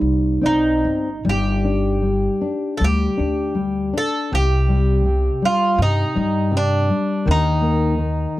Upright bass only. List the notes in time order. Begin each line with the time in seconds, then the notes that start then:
0.01 C2
0.44 B1
0.85 G1
1.25 G1
2.81 D2
3.19 D2
4.33 C2
5.78 G2
6.16 G2
7.28 D#2